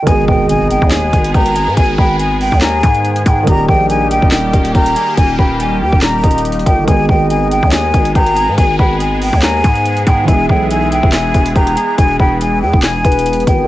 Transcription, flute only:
0.07 0.25 G#5 loud
0.28 0.46 G5 medium
0.49 0.68 G#5 medium
0.71 0.89 G5 medium
0.92 1.32 G#5 medium
1.35 1.74 A#5 medium
1.77 1.95 G#5 loud
1.98 2.16 G5 medium
2.19 2.38 G#5 medium
2.41 2.59 G5 medium
2.62 3.22 G#5 medium
3.26 3.44 G5 medium
3.47 3.65 A#5 loud
3.69 3.87 G5 loud
3.90 4.08 G#5 medium
4.11 4.29 G5 medium
4.32 4.72 G5 medium
4.75 5.15 A#5 loud
5.17 5.36 G#5 loud
5.39 5.57 G5 medium
5.60 5.78 G#5 medium
5.82 6.00 G5 medium
6.02 6.41 A#5 medium
6.66 6.84 G5 medium
6.88 7.06 G#5 loud
7.09 7.27 G5 medium
7.30 7.48 G#5 medium
7.51 7.69 G5 medium
7.73 8.13 G#5 medium
8.15 8.55 A#5 medium
8.58 8.76 G#5 loud
8.79 8.97 G5 medium
9.01 9.19 G#5 medium
9.22 9.40 G5 medium
9.43 10.03 G#5 medium
10.07 10.25 G5 medium
10.28 10.46 G#5 loud
10.50 10.68 G5 medium
10.71 10.89 G#5 medium
10.92 11.10 G5 medium
11.13 11.53 G#5 medium
11.56 11.96 A#5 medium
11.98 12.16 G#5 loud
12.20 12.38 G5 medium
12.41 12.59 G#5 medium
12.62 12.80 G5 medium
12.83 13.43 G#5 medium
13.47 13.65 G5 medium

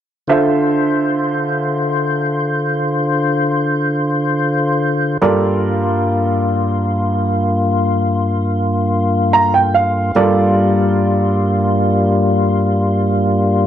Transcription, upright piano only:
0.29 5.18 D3 soft
0.29 5.18 F4 soft
0.29 5.18 A4 soft
0.29 5.18 C5 soft
0.29 5.18 E5 soft
5.22 10.11 G3 soft
5.22 10.11 F4 soft
5.22 10.11 A4 soft
5.22 10.11 A#4 soft
5.22 10.12 D5 soft
9.33 9.52 A#5 medium
9.54 9.73 G5 soft
9.74 10.13 F5 soft
10.16 13.67 G3 soft
10.16 13.67 F4 soft
10.16 13.67 A4 soft
10.16 13.67 A#4 soft
10.16 13.67 D5 soft

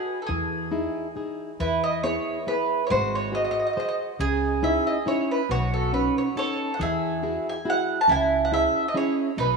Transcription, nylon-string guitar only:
0.00 0.19 F#4 soft
0.00 0.20 B4 soft
0.00 0.20 D#5 soft
0.29 0.71 E3 medium
0.71 1.07 D#4 soft
0.71 1.07 E4 soft
0.71 1.07 G#4 soft
1.16 1.51 D#4 soft
1.16 1.51 E4 soft
1.16 1.52 G#4 soft
1.60 2.02 E3 medium
2.04 2.38 B3 soft
2.04 2.38 E4 soft
2.04 2.39 G#4 soft
2.47 2.82 B3 soft
2.47 2.82 E4 soft
2.47 2.82 G#4 soft
2.90 3.32 G#3 medium
3.32 3.67 F#4 soft
3.32 3.67 G#4 soft
3.32 3.68 C5 soft
3.77 4.11 F#4 soft
3.77 4.11 G#4 soft
3.77 4.11 C5 soft
4.19 4.61 C#3 medium
4.62 4.97 C#4 soft
4.62 4.97 D#4 soft
4.62 4.97 E4 medium
5.06 5.40 C#4 soft
5.06 5.41 D#4 soft
5.06 5.41 E4 medium
5.49 5.91 B2 medium
5.93 6.27 B3 soft
5.93 6.27 C#4 soft
5.93 6.27 D#4 soft
6.36 6.70 B3 soft
6.36 6.71 C#4 soft
6.36 6.71 D#4 soft
6.79 7.21 E3 medium
7.23 7.57 E4 soft
7.23 7.57 F#4 soft
7.23 7.58 G#4 medium
7.65 8.00 E4 soft
7.65 8.00 F#4 soft
7.65 8.00 G#4 soft
8.08 8.50 C#3 soft
8.52 8.86 C#4 soft
8.52 8.86 E4 soft
8.52 8.87 G#4 soft
8.94 9.29 C#4 soft
8.94 9.29 E4 soft
8.94 9.30 G#4 soft
9.37 9.57 B2 medium

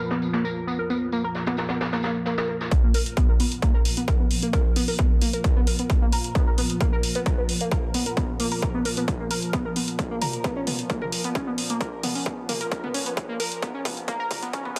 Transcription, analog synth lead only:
0.11 0.13 B3 medium
0.34 0.38 A#3 medium
0.44 0.47 A#4 loud
0.67 0.72 B3 medium
0.79 0.81 A#4 medium
0.90 0.93 B3 medium
1.12 1.17 A#3 loud
1.24 1.27 A#4 loud
1.47 1.51 B3 loud
1.58 1.61 A#4 medium
1.70 1.72 B3 medium
1.93 1.97 A#3 loud
2.04 2.11 A#3 medium
2.26 2.33 A#3 medium
2.38 2.45 A#3 medium
2.49 2.52 A#3 medium
2.83 2.88 A#3 loud
2.94 2.97 A#4 loud
3.17 3.22 B3 loud
3.29 3.32 A#4 medium
3.40 3.43 B3 medium
3.62 3.67 A#3 loud
3.74 3.77 A#4 loud
3.97 4.01 B3 medium
4.08 4.11 A#4 medium
4.20 4.22 B3 medium
4.43 4.47 A#3 loud
4.53 4.56 A#4 loud
4.76 4.81 B3 loud
4.88 4.91 A#4 medium
4.99 5.02 B3 medium
5.22 5.26 A#3 loud
5.33 5.36 A#4 loud
5.56 5.61 B3 loud
5.67 5.70 A#4 medium
5.79 5.82 B3 medium
6.02 6.06 A#3 loud
6.13 6.15 A#4 loud
6.35 6.40 B3 loud
6.47 6.50 A#4 medium
6.58 6.61 B3 medium
6.81 6.85 A#3 loud
6.93 6.95 A#4 loud
7.15 7.20 B3 loud
7.26 7.29 A#4 medium
7.38 7.41 B3 medium
7.61 7.65 A#3 loud
7.72 7.74 A#4 loud
7.94 7.99 B3 loud
8.06 8.09 A#4 medium
8.17 8.20 B3 medium
8.40 8.44 A#3 loud
8.52 8.54 A#4 loud
8.74 8.79 B3 loud
8.85 8.88 A#4 medium
8.97 9.00 B3 medium
9.20 9.24 A#3 loud
9.31 9.33 A#4 loud
9.53 9.58 B3 loud
9.65 9.68 A#4 medium
9.76 9.79 B3 medium
10.11 10.15 A#3 loud
10.22 10.24 A#4 loud
10.44 10.49 B3 loud
10.56 10.61 C#4 medium
10.67 10.70 B3 medium
10.90 10.94 A#3 loud
11.02 11.04 A#4 loud
11.24 11.29 B3 loud
11.35 11.40 C#4 medium
11.47 11.50 B3 medium
11.70 11.74 A#3 loud
11.81 11.84 A#4 loud
12.03 12.08 B3 loud
12.15 12.20 C#4 medium
12.26 12.29 B3 medium
12.49 12.54 A#3 loud
12.61 12.63 A#4 loud
12.83 12.88 B3 loud
12.94 12.99 C#4 medium
13.06 13.09 B3 medium
13.29 13.33 A#3 loud
13.40 13.43 A#4 loud
13.62 13.67 B3 loud
13.74 13.79 C#4 medium
13.85 13.88 B3 medium
14.08 14.13 A#3 loud
14.20 14.22 A#4 loud
14.42 14.47 B3 loud
14.53 14.58 C#4 medium
14.65 14.68 B3 medium

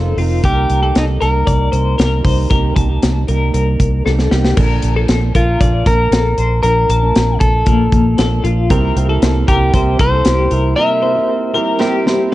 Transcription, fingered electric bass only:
0.00 0.13 F1 loud
0.17 0.39 F1 medium
0.44 0.65 C2 medium
0.70 0.91 C2 medium
0.96 1.17 C2 medium
1.22 1.43 C2 medium
1.47 1.68 C2 medium
1.73 1.94 C2 loud
1.99 2.20 C2 loud
2.24 2.46 C2 medium
2.51 2.72 C2 loud
2.76 2.97 C2 medium
3.03 3.24 C2 medium
3.29 3.50 C2 medium
3.54 3.75 C2 medium
3.80 4.01 C2 medium
4.06 4.27 C2 medium
4.32 4.53 C2 medium
4.58 4.79 A#1 medium
4.83 5.04 A#1 medium
5.09 5.30 A#1 medium
5.35 5.56 A#1 medium
5.61 5.82 A#1 medium
5.86 6.08 A#1 loud
6.11 6.33 A#1 medium
6.38 6.59 A#1 medium
6.64 6.85 A#1 loud
6.89 7.11 A#1 medium
7.16 7.37 A#1 medium
7.41 7.62 A#1 medium
7.67 7.88 A#1 loud
7.92 8.14 A#1 loud
8.19 8.40 A#1 medium
8.44 8.70 A#1 loud
8.70 8.92 C2 loud
8.96 9.18 C2 medium
9.22 9.43 C2 medium
9.48 9.69 C2 medium
9.74 9.95 C2 loud
10.00 10.21 C2 loud
10.26 10.47 C2 medium
10.52 10.73 C2 medium

